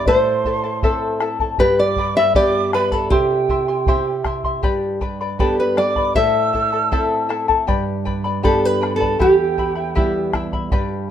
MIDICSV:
0, 0, Header, 1, 6, 480
1, 0, Start_track
1, 0, Tempo, 760456
1, 45, Time_signature, 2, 2, 24, 8
1, 7010, End_track
2, 0, Start_track
2, 0, Title_t, "Quena"
2, 0, Program_c, 0, 77
2, 54, Note_on_c, 0, 84, 78
2, 744, Note_off_c, 0, 84, 0
2, 1017, Note_on_c, 0, 83, 74
2, 1123, Note_off_c, 0, 83, 0
2, 1136, Note_on_c, 0, 86, 84
2, 1354, Note_off_c, 0, 86, 0
2, 1377, Note_on_c, 0, 88, 85
2, 1484, Note_off_c, 0, 88, 0
2, 1493, Note_on_c, 0, 86, 87
2, 1713, Note_off_c, 0, 86, 0
2, 1728, Note_on_c, 0, 83, 82
2, 1846, Note_on_c, 0, 81, 71
2, 1856, Note_off_c, 0, 83, 0
2, 1959, Note_off_c, 0, 81, 0
2, 1963, Note_on_c, 0, 79, 72
2, 2659, Note_off_c, 0, 79, 0
2, 3415, Note_on_c, 0, 81, 70
2, 3522, Note_off_c, 0, 81, 0
2, 3534, Note_on_c, 0, 83, 65
2, 3642, Note_off_c, 0, 83, 0
2, 3652, Note_on_c, 0, 86, 85
2, 3872, Note_off_c, 0, 86, 0
2, 3894, Note_on_c, 0, 88, 85
2, 4585, Note_off_c, 0, 88, 0
2, 5334, Note_on_c, 0, 81, 80
2, 5456, Note_on_c, 0, 83, 77
2, 5466, Note_off_c, 0, 81, 0
2, 5647, Note_off_c, 0, 83, 0
2, 5651, Note_on_c, 0, 81, 72
2, 5798, Note_off_c, 0, 81, 0
2, 5812, Note_on_c, 0, 79, 72
2, 6504, Note_off_c, 0, 79, 0
2, 7010, End_track
3, 0, Start_track
3, 0, Title_t, "Charango"
3, 0, Program_c, 1, 24
3, 47, Note_on_c, 1, 72, 73
3, 49, Note_on_c, 1, 76, 70
3, 50, Note_on_c, 1, 69, 75
3, 51, Note_on_c, 1, 64, 76
3, 53, Note_on_c, 1, 81, 74
3, 279, Note_off_c, 1, 76, 0
3, 280, Note_off_c, 1, 64, 0
3, 285, Note_off_c, 1, 69, 0
3, 286, Note_off_c, 1, 72, 0
3, 286, Note_on_c, 1, 76, 58
3, 287, Note_off_c, 1, 81, 0
3, 288, Note_on_c, 1, 64, 53
3, 293, Note_on_c, 1, 69, 58
3, 295, Note_on_c, 1, 81, 67
3, 395, Note_off_c, 1, 81, 0
3, 400, Note_off_c, 1, 69, 0
3, 402, Note_on_c, 1, 81, 50
3, 404, Note_off_c, 1, 64, 0
3, 406, Note_off_c, 1, 76, 0
3, 408, Note_on_c, 1, 69, 39
3, 412, Note_on_c, 1, 64, 45
3, 521, Note_off_c, 1, 69, 0
3, 522, Note_off_c, 1, 64, 0
3, 522, Note_off_c, 1, 81, 0
3, 524, Note_on_c, 1, 72, 77
3, 527, Note_on_c, 1, 76, 86
3, 529, Note_on_c, 1, 64, 79
3, 529, Note_on_c, 1, 69, 81
3, 529, Note_on_c, 1, 81, 80
3, 755, Note_off_c, 1, 76, 0
3, 760, Note_off_c, 1, 64, 0
3, 761, Note_off_c, 1, 69, 0
3, 762, Note_on_c, 1, 76, 74
3, 763, Note_off_c, 1, 81, 0
3, 765, Note_off_c, 1, 72, 0
3, 767, Note_on_c, 1, 64, 61
3, 769, Note_on_c, 1, 69, 73
3, 770, Note_on_c, 1, 81, 68
3, 878, Note_off_c, 1, 81, 0
3, 883, Note_off_c, 1, 69, 0
3, 884, Note_off_c, 1, 76, 0
3, 885, Note_off_c, 1, 64, 0
3, 885, Note_on_c, 1, 81, 46
3, 890, Note_on_c, 1, 69, 51
3, 892, Note_on_c, 1, 64, 41
3, 1003, Note_off_c, 1, 64, 0
3, 1003, Note_on_c, 1, 67, 80
3, 1004, Note_on_c, 1, 79, 78
3, 1005, Note_on_c, 1, 71, 79
3, 1006, Note_off_c, 1, 69, 0
3, 1006, Note_off_c, 1, 81, 0
3, 1009, Note_on_c, 1, 74, 77
3, 1009, Note_on_c, 1, 83, 77
3, 1243, Note_off_c, 1, 79, 0
3, 1244, Note_off_c, 1, 67, 0
3, 1246, Note_off_c, 1, 71, 0
3, 1247, Note_off_c, 1, 74, 0
3, 1247, Note_off_c, 1, 83, 0
3, 1250, Note_on_c, 1, 79, 62
3, 1255, Note_on_c, 1, 71, 64
3, 1257, Note_on_c, 1, 83, 64
3, 1258, Note_on_c, 1, 74, 56
3, 1362, Note_off_c, 1, 83, 0
3, 1367, Note_off_c, 1, 74, 0
3, 1368, Note_off_c, 1, 79, 0
3, 1370, Note_off_c, 1, 71, 0
3, 1370, Note_on_c, 1, 83, 56
3, 1374, Note_on_c, 1, 74, 53
3, 1378, Note_on_c, 1, 71, 42
3, 1478, Note_off_c, 1, 71, 0
3, 1482, Note_off_c, 1, 74, 0
3, 1484, Note_off_c, 1, 83, 0
3, 1484, Note_on_c, 1, 67, 79
3, 1485, Note_on_c, 1, 71, 73
3, 1486, Note_on_c, 1, 79, 73
3, 1489, Note_on_c, 1, 74, 88
3, 1492, Note_on_c, 1, 83, 81
3, 1718, Note_off_c, 1, 79, 0
3, 1722, Note_off_c, 1, 71, 0
3, 1723, Note_off_c, 1, 74, 0
3, 1725, Note_off_c, 1, 67, 0
3, 1726, Note_on_c, 1, 79, 61
3, 1729, Note_off_c, 1, 83, 0
3, 1729, Note_on_c, 1, 71, 68
3, 1731, Note_on_c, 1, 74, 61
3, 1736, Note_on_c, 1, 83, 68
3, 1834, Note_off_c, 1, 83, 0
3, 1840, Note_off_c, 1, 74, 0
3, 1842, Note_on_c, 1, 83, 55
3, 1846, Note_off_c, 1, 71, 0
3, 1846, Note_off_c, 1, 79, 0
3, 1848, Note_on_c, 1, 74, 44
3, 1854, Note_on_c, 1, 71, 44
3, 1962, Note_off_c, 1, 71, 0
3, 1962, Note_off_c, 1, 74, 0
3, 1962, Note_on_c, 1, 79, 68
3, 1963, Note_on_c, 1, 72, 74
3, 1964, Note_off_c, 1, 83, 0
3, 1965, Note_on_c, 1, 64, 70
3, 1965, Note_on_c, 1, 76, 78
3, 1968, Note_on_c, 1, 84, 89
3, 2197, Note_off_c, 1, 79, 0
3, 2200, Note_off_c, 1, 64, 0
3, 2203, Note_off_c, 1, 76, 0
3, 2204, Note_off_c, 1, 72, 0
3, 2205, Note_on_c, 1, 79, 62
3, 2206, Note_off_c, 1, 84, 0
3, 2207, Note_on_c, 1, 64, 66
3, 2210, Note_on_c, 1, 76, 63
3, 2213, Note_on_c, 1, 84, 67
3, 2317, Note_off_c, 1, 84, 0
3, 2322, Note_off_c, 1, 76, 0
3, 2324, Note_on_c, 1, 84, 49
3, 2325, Note_off_c, 1, 79, 0
3, 2327, Note_off_c, 1, 64, 0
3, 2330, Note_on_c, 1, 76, 45
3, 2333, Note_on_c, 1, 64, 38
3, 2443, Note_off_c, 1, 64, 0
3, 2443, Note_off_c, 1, 76, 0
3, 2445, Note_off_c, 1, 84, 0
3, 2447, Note_on_c, 1, 72, 76
3, 2450, Note_on_c, 1, 79, 76
3, 2451, Note_on_c, 1, 64, 71
3, 2451, Note_on_c, 1, 76, 83
3, 2454, Note_on_c, 1, 84, 81
3, 2674, Note_off_c, 1, 79, 0
3, 2677, Note_off_c, 1, 64, 0
3, 2680, Note_off_c, 1, 76, 0
3, 2682, Note_on_c, 1, 79, 63
3, 2683, Note_off_c, 1, 84, 0
3, 2684, Note_on_c, 1, 64, 68
3, 2686, Note_off_c, 1, 72, 0
3, 2687, Note_on_c, 1, 76, 64
3, 2691, Note_on_c, 1, 84, 73
3, 2798, Note_off_c, 1, 84, 0
3, 2804, Note_off_c, 1, 79, 0
3, 2805, Note_off_c, 1, 64, 0
3, 2805, Note_off_c, 1, 76, 0
3, 2806, Note_on_c, 1, 84, 51
3, 2813, Note_on_c, 1, 76, 47
3, 2817, Note_on_c, 1, 64, 44
3, 2920, Note_on_c, 1, 67, 81
3, 2923, Note_off_c, 1, 64, 0
3, 2924, Note_on_c, 1, 79, 82
3, 2925, Note_off_c, 1, 76, 0
3, 2925, Note_on_c, 1, 71, 83
3, 2926, Note_off_c, 1, 84, 0
3, 2928, Note_on_c, 1, 74, 83
3, 2929, Note_on_c, 1, 83, 85
3, 3154, Note_off_c, 1, 79, 0
3, 3156, Note_off_c, 1, 71, 0
3, 3159, Note_off_c, 1, 74, 0
3, 3161, Note_off_c, 1, 83, 0
3, 3161, Note_on_c, 1, 79, 55
3, 3163, Note_off_c, 1, 67, 0
3, 3164, Note_on_c, 1, 71, 68
3, 3166, Note_on_c, 1, 74, 72
3, 3169, Note_on_c, 1, 83, 71
3, 3280, Note_off_c, 1, 83, 0
3, 3284, Note_off_c, 1, 74, 0
3, 3284, Note_off_c, 1, 79, 0
3, 3285, Note_off_c, 1, 71, 0
3, 3288, Note_on_c, 1, 83, 48
3, 3292, Note_on_c, 1, 74, 51
3, 3297, Note_on_c, 1, 71, 42
3, 3401, Note_off_c, 1, 71, 0
3, 3401, Note_off_c, 1, 83, 0
3, 3402, Note_off_c, 1, 74, 0
3, 3406, Note_on_c, 1, 67, 75
3, 3407, Note_on_c, 1, 79, 76
3, 3408, Note_on_c, 1, 71, 77
3, 3408, Note_on_c, 1, 83, 78
3, 3410, Note_on_c, 1, 74, 83
3, 3635, Note_off_c, 1, 79, 0
3, 3638, Note_off_c, 1, 71, 0
3, 3640, Note_off_c, 1, 74, 0
3, 3642, Note_on_c, 1, 79, 60
3, 3643, Note_off_c, 1, 83, 0
3, 3646, Note_off_c, 1, 67, 0
3, 3646, Note_on_c, 1, 71, 64
3, 3647, Note_on_c, 1, 74, 67
3, 3650, Note_on_c, 1, 83, 55
3, 3756, Note_off_c, 1, 83, 0
3, 3760, Note_off_c, 1, 74, 0
3, 3763, Note_on_c, 1, 83, 54
3, 3764, Note_off_c, 1, 79, 0
3, 3766, Note_off_c, 1, 71, 0
3, 3768, Note_on_c, 1, 74, 44
3, 3772, Note_on_c, 1, 71, 40
3, 3885, Note_off_c, 1, 83, 0
3, 3885, Note_on_c, 1, 76, 70
3, 3886, Note_off_c, 1, 71, 0
3, 3886, Note_on_c, 1, 72, 71
3, 3887, Note_off_c, 1, 74, 0
3, 3889, Note_on_c, 1, 64, 78
3, 3889, Note_on_c, 1, 69, 84
3, 3890, Note_on_c, 1, 81, 77
3, 4115, Note_off_c, 1, 76, 0
3, 4120, Note_off_c, 1, 64, 0
3, 4122, Note_off_c, 1, 69, 0
3, 4122, Note_on_c, 1, 76, 56
3, 4124, Note_off_c, 1, 81, 0
3, 4126, Note_off_c, 1, 72, 0
3, 4128, Note_on_c, 1, 64, 64
3, 4130, Note_on_c, 1, 69, 64
3, 4131, Note_on_c, 1, 81, 60
3, 4237, Note_off_c, 1, 81, 0
3, 4242, Note_off_c, 1, 69, 0
3, 4244, Note_off_c, 1, 76, 0
3, 4245, Note_on_c, 1, 81, 51
3, 4247, Note_off_c, 1, 64, 0
3, 4250, Note_on_c, 1, 69, 49
3, 4254, Note_on_c, 1, 64, 41
3, 4361, Note_off_c, 1, 64, 0
3, 4364, Note_off_c, 1, 69, 0
3, 4364, Note_off_c, 1, 81, 0
3, 4366, Note_on_c, 1, 72, 77
3, 4368, Note_on_c, 1, 64, 89
3, 4369, Note_on_c, 1, 76, 73
3, 4371, Note_on_c, 1, 81, 81
3, 4372, Note_on_c, 1, 69, 82
3, 4594, Note_off_c, 1, 76, 0
3, 4598, Note_off_c, 1, 64, 0
3, 4600, Note_off_c, 1, 69, 0
3, 4601, Note_on_c, 1, 76, 66
3, 4605, Note_off_c, 1, 81, 0
3, 4606, Note_off_c, 1, 72, 0
3, 4606, Note_on_c, 1, 64, 72
3, 4608, Note_on_c, 1, 69, 71
3, 4613, Note_on_c, 1, 81, 75
3, 4715, Note_off_c, 1, 81, 0
3, 4720, Note_off_c, 1, 69, 0
3, 4723, Note_on_c, 1, 81, 62
3, 4724, Note_off_c, 1, 64, 0
3, 4724, Note_off_c, 1, 76, 0
3, 4727, Note_on_c, 1, 69, 51
3, 4731, Note_on_c, 1, 64, 51
3, 4842, Note_on_c, 1, 67, 83
3, 4843, Note_off_c, 1, 64, 0
3, 4845, Note_off_c, 1, 69, 0
3, 4845, Note_off_c, 1, 81, 0
3, 4846, Note_on_c, 1, 71, 80
3, 4846, Note_on_c, 1, 79, 75
3, 4848, Note_on_c, 1, 74, 88
3, 4851, Note_on_c, 1, 83, 87
3, 5076, Note_off_c, 1, 79, 0
3, 5079, Note_off_c, 1, 71, 0
3, 5081, Note_off_c, 1, 74, 0
3, 5083, Note_on_c, 1, 79, 67
3, 5084, Note_off_c, 1, 67, 0
3, 5085, Note_off_c, 1, 83, 0
3, 5087, Note_on_c, 1, 71, 66
3, 5089, Note_on_c, 1, 74, 68
3, 5092, Note_on_c, 1, 83, 67
3, 5195, Note_off_c, 1, 83, 0
3, 5200, Note_off_c, 1, 74, 0
3, 5203, Note_on_c, 1, 83, 53
3, 5205, Note_off_c, 1, 79, 0
3, 5207, Note_off_c, 1, 71, 0
3, 5208, Note_on_c, 1, 74, 47
3, 5213, Note_on_c, 1, 71, 39
3, 5320, Note_off_c, 1, 71, 0
3, 5321, Note_off_c, 1, 74, 0
3, 5322, Note_off_c, 1, 83, 0
3, 5323, Note_on_c, 1, 67, 86
3, 5325, Note_on_c, 1, 79, 73
3, 5328, Note_on_c, 1, 71, 81
3, 5329, Note_on_c, 1, 74, 73
3, 5330, Note_on_c, 1, 83, 86
3, 5553, Note_off_c, 1, 79, 0
3, 5559, Note_off_c, 1, 71, 0
3, 5559, Note_off_c, 1, 74, 0
3, 5560, Note_on_c, 1, 79, 59
3, 5563, Note_off_c, 1, 83, 0
3, 5565, Note_off_c, 1, 67, 0
3, 5566, Note_on_c, 1, 74, 62
3, 5567, Note_on_c, 1, 71, 58
3, 5570, Note_on_c, 1, 83, 66
3, 5678, Note_off_c, 1, 83, 0
3, 5681, Note_off_c, 1, 74, 0
3, 5683, Note_off_c, 1, 79, 0
3, 5685, Note_on_c, 1, 83, 52
3, 5687, Note_off_c, 1, 71, 0
3, 5688, Note_on_c, 1, 74, 47
3, 5693, Note_on_c, 1, 71, 41
3, 5801, Note_off_c, 1, 83, 0
3, 5803, Note_off_c, 1, 71, 0
3, 5803, Note_off_c, 1, 74, 0
3, 5803, Note_on_c, 1, 67, 71
3, 5803, Note_on_c, 1, 79, 74
3, 5805, Note_on_c, 1, 76, 69
3, 5806, Note_on_c, 1, 64, 82
3, 5808, Note_on_c, 1, 83, 85
3, 6037, Note_off_c, 1, 79, 0
3, 6039, Note_off_c, 1, 64, 0
3, 6041, Note_off_c, 1, 76, 0
3, 6044, Note_off_c, 1, 67, 0
3, 6044, Note_on_c, 1, 79, 53
3, 6047, Note_off_c, 1, 83, 0
3, 6047, Note_on_c, 1, 64, 57
3, 6048, Note_on_c, 1, 76, 61
3, 6054, Note_on_c, 1, 83, 64
3, 6150, Note_off_c, 1, 83, 0
3, 6155, Note_off_c, 1, 76, 0
3, 6157, Note_on_c, 1, 83, 50
3, 6162, Note_off_c, 1, 64, 0
3, 6162, Note_on_c, 1, 76, 38
3, 6165, Note_off_c, 1, 79, 0
3, 6170, Note_on_c, 1, 64, 39
3, 6277, Note_off_c, 1, 76, 0
3, 6278, Note_off_c, 1, 64, 0
3, 6282, Note_off_c, 1, 83, 0
3, 6282, Note_on_c, 1, 79, 86
3, 6283, Note_on_c, 1, 67, 86
3, 6285, Note_on_c, 1, 64, 79
3, 6285, Note_on_c, 1, 76, 76
3, 6288, Note_on_c, 1, 83, 88
3, 6519, Note_off_c, 1, 79, 0
3, 6521, Note_off_c, 1, 64, 0
3, 6525, Note_off_c, 1, 67, 0
3, 6525, Note_off_c, 1, 76, 0
3, 6526, Note_on_c, 1, 79, 64
3, 6527, Note_off_c, 1, 83, 0
3, 6529, Note_on_c, 1, 64, 71
3, 6532, Note_on_c, 1, 76, 69
3, 6535, Note_on_c, 1, 83, 76
3, 6639, Note_off_c, 1, 83, 0
3, 6643, Note_off_c, 1, 76, 0
3, 6646, Note_off_c, 1, 79, 0
3, 6647, Note_off_c, 1, 64, 0
3, 6647, Note_on_c, 1, 83, 56
3, 6650, Note_on_c, 1, 76, 50
3, 6655, Note_on_c, 1, 64, 47
3, 6764, Note_off_c, 1, 83, 0
3, 6764, Note_on_c, 1, 67, 79
3, 6766, Note_off_c, 1, 64, 0
3, 6766, Note_off_c, 1, 76, 0
3, 6766, Note_on_c, 1, 79, 88
3, 6768, Note_on_c, 1, 74, 82
3, 6769, Note_on_c, 1, 71, 84
3, 6771, Note_on_c, 1, 83, 90
3, 6996, Note_off_c, 1, 79, 0
3, 6999, Note_off_c, 1, 71, 0
3, 7000, Note_off_c, 1, 74, 0
3, 7003, Note_off_c, 1, 83, 0
3, 7005, Note_off_c, 1, 67, 0
3, 7010, End_track
4, 0, Start_track
4, 0, Title_t, "Nylon-string guitar"
4, 0, Program_c, 2, 24
4, 48, Note_on_c, 2, 72, 89
4, 742, Note_off_c, 2, 72, 0
4, 1009, Note_on_c, 2, 71, 104
4, 1131, Note_off_c, 2, 71, 0
4, 1133, Note_on_c, 2, 74, 80
4, 1365, Note_off_c, 2, 74, 0
4, 1368, Note_on_c, 2, 76, 108
4, 1478, Note_off_c, 2, 76, 0
4, 1489, Note_on_c, 2, 74, 91
4, 1711, Note_off_c, 2, 74, 0
4, 1732, Note_on_c, 2, 71, 91
4, 1842, Note_off_c, 2, 71, 0
4, 1842, Note_on_c, 2, 69, 74
4, 1959, Note_on_c, 2, 67, 91
4, 1968, Note_off_c, 2, 69, 0
4, 2657, Note_off_c, 2, 67, 0
4, 3408, Note_on_c, 2, 69, 61
4, 3519, Note_off_c, 2, 69, 0
4, 3533, Note_on_c, 2, 71, 76
4, 3641, Note_off_c, 2, 71, 0
4, 3647, Note_on_c, 2, 74, 92
4, 3870, Note_off_c, 2, 74, 0
4, 3886, Note_on_c, 2, 76, 112
4, 4581, Note_off_c, 2, 76, 0
4, 5333, Note_on_c, 2, 69, 73
4, 5462, Note_off_c, 2, 69, 0
4, 5462, Note_on_c, 2, 71, 102
4, 5653, Note_off_c, 2, 71, 0
4, 5655, Note_on_c, 2, 69, 81
4, 5816, Note_off_c, 2, 69, 0
4, 5817, Note_on_c, 2, 67, 89
4, 6506, Note_off_c, 2, 67, 0
4, 7010, End_track
5, 0, Start_track
5, 0, Title_t, "Nylon-string guitar"
5, 0, Program_c, 3, 24
5, 46, Note_on_c, 3, 45, 60
5, 530, Note_on_c, 3, 60, 54
5, 533, Note_on_c, 3, 64, 41
5, 536, Note_on_c, 3, 69, 54
5, 981, Note_off_c, 3, 45, 0
5, 994, Note_off_c, 3, 60, 0
5, 995, Note_off_c, 3, 64, 0
5, 996, Note_off_c, 3, 69, 0
5, 1008, Note_on_c, 3, 43, 55
5, 1485, Note_on_c, 3, 59, 46
5, 1487, Note_on_c, 3, 62, 46
5, 1490, Note_on_c, 3, 67, 53
5, 1941, Note_off_c, 3, 43, 0
5, 1951, Note_off_c, 3, 59, 0
5, 1952, Note_off_c, 3, 62, 0
5, 1953, Note_off_c, 3, 67, 0
5, 1968, Note_on_c, 3, 48, 59
5, 2448, Note_on_c, 3, 60, 43
5, 2450, Note_on_c, 3, 64, 44
5, 2455, Note_on_c, 3, 67, 53
5, 2902, Note_off_c, 3, 48, 0
5, 2912, Note_off_c, 3, 60, 0
5, 2914, Note_off_c, 3, 64, 0
5, 2915, Note_off_c, 3, 67, 0
5, 2928, Note_on_c, 3, 43, 56
5, 3403, Note_on_c, 3, 59, 48
5, 3406, Note_on_c, 3, 62, 43
5, 3410, Note_on_c, 3, 67, 50
5, 3862, Note_off_c, 3, 43, 0
5, 3870, Note_off_c, 3, 59, 0
5, 3872, Note_off_c, 3, 62, 0
5, 3873, Note_off_c, 3, 67, 0
5, 3890, Note_on_c, 3, 45, 56
5, 4366, Note_on_c, 3, 60, 51
5, 4370, Note_on_c, 3, 64, 46
5, 4373, Note_on_c, 3, 69, 55
5, 4823, Note_off_c, 3, 45, 0
5, 4832, Note_off_c, 3, 60, 0
5, 4834, Note_off_c, 3, 64, 0
5, 4835, Note_off_c, 3, 69, 0
5, 4848, Note_on_c, 3, 43, 62
5, 5325, Note_on_c, 3, 59, 55
5, 5328, Note_on_c, 3, 62, 46
5, 5331, Note_on_c, 3, 67, 59
5, 5782, Note_off_c, 3, 43, 0
5, 5791, Note_off_c, 3, 59, 0
5, 5793, Note_off_c, 3, 62, 0
5, 5794, Note_off_c, 3, 67, 0
5, 5802, Note_on_c, 3, 40, 60
5, 6291, Note_on_c, 3, 55, 52
5, 6293, Note_on_c, 3, 59, 44
5, 6298, Note_on_c, 3, 64, 52
5, 6739, Note_off_c, 3, 40, 0
5, 6754, Note_off_c, 3, 55, 0
5, 6756, Note_off_c, 3, 59, 0
5, 6757, Note_off_c, 3, 64, 0
5, 6771, Note_on_c, 3, 43, 60
5, 7010, Note_off_c, 3, 43, 0
5, 7010, End_track
6, 0, Start_track
6, 0, Title_t, "Bombo"
6, 40, Note_on_c, 9, 43, 73
6, 103, Note_off_c, 9, 43, 0
6, 282, Note_on_c, 9, 43, 44
6, 345, Note_off_c, 9, 43, 0
6, 522, Note_on_c, 9, 43, 77
6, 585, Note_off_c, 9, 43, 0
6, 761, Note_on_c, 9, 37, 57
6, 824, Note_off_c, 9, 37, 0
6, 881, Note_on_c, 9, 43, 53
6, 944, Note_off_c, 9, 43, 0
6, 999, Note_on_c, 9, 43, 74
6, 1062, Note_off_c, 9, 43, 0
6, 1238, Note_on_c, 9, 43, 54
6, 1301, Note_off_c, 9, 43, 0
6, 1481, Note_on_c, 9, 43, 77
6, 1544, Note_off_c, 9, 43, 0
6, 1725, Note_on_c, 9, 37, 60
6, 1788, Note_off_c, 9, 37, 0
6, 1840, Note_on_c, 9, 43, 58
6, 1904, Note_off_c, 9, 43, 0
6, 1961, Note_on_c, 9, 43, 85
6, 2024, Note_off_c, 9, 43, 0
6, 2203, Note_on_c, 9, 43, 60
6, 2266, Note_off_c, 9, 43, 0
6, 2439, Note_on_c, 9, 43, 86
6, 2503, Note_off_c, 9, 43, 0
6, 2680, Note_on_c, 9, 37, 50
6, 2680, Note_on_c, 9, 43, 51
6, 2743, Note_off_c, 9, 37, 0
6, 2743, Note_off_c, 9, 43, 0
6, 2800, Note_on_c, 9, 43, 51
6, 2863, Note_off_c, 9, 43, 0
6, 2923, Note_on_c, 9, 43, 70
6, 2986, Note_off_c, 9, 43, 0
6, 3162, Note_on_c, 9, 43, 52
6, 3225, Note_off_c, 9, 43, 0
6, 3404, Note_on_c, 9, 43, 71
6, 3468, Note_off_c, 9, 43, 0
6, 3644, Note_on_c, 9, 37, 50
6, 3707, Note_off_c, 9, 37, 0
6, 3761, Note_on_c, 9, 43, 48
6, 3824, Note_off_c, 9, 43, 0
6, 3882, Note_on_c, 9, 43, 59
6, 3945, Note_off_c, 9, 43, 0
6, 4128, Note_on_c, 9, 43, 41
6, 4191, Note_off_c, 9, 43, 0
6, 4368, Note_on_c, 9, 43, 66
6, 4431, Note_off_c, 9, 43, 0
6, 4611, Note_on_c, 9, 37, 53
6, 4674, Note_off_c, 9, 37, 0
6, 4729, Note_on_c, 9, 43, 52
6, 4792, Note_off_c, 9, 43, 0
6, 4849, Note_on_c, 9, 43, 72
6, 4913, Note_off_c, 9, 43, 0
6, 5093, Note_on_c, 9, 43, 49
6, 5156, Note_off_c, 9, 43, 0
6, 5331, Note_on_c, 9, 43, 75
6, 5394, Note_off_c, 9, 43, 0
6, 5575, Note_on_c, 9, 37, 50
6, 5638, Note_off_c, 9, 37, 0
6, 5692, Note_on_c, 9, 43, 46
6, 5755, Note_off_c, 9, 43, 0
6, 5807, Note_on_c, 9, 43, 66
6, 5871, Note_off_c, 9, 43, 0
6, 6047, Note_on_c, 9, 43, 45
6, 6110, Note_off_c, 9, 43, 0
6, 6290, Note_on_c, 9, 43, 76
6, 6353, Note_off_c, 9, 43, 0
6, 6523, Note_on_c, 9, 37, 56
6, 6523, Note_on_c, 9, 43, 48
6, 6586, Note_off_c, 9, 37, 0
6, 6586, Note_off_c, 9, 43, 0
6, 6646, Note_on_c, 9, 43, 54
6, 6709, Note_off_c, 9, 43, 0
6, 6764, Note_on_c, 9, 43, 86
6, 6827, Note_off_c, 9, 43, 0
6, 7010, End_track
0, 0, End_of_file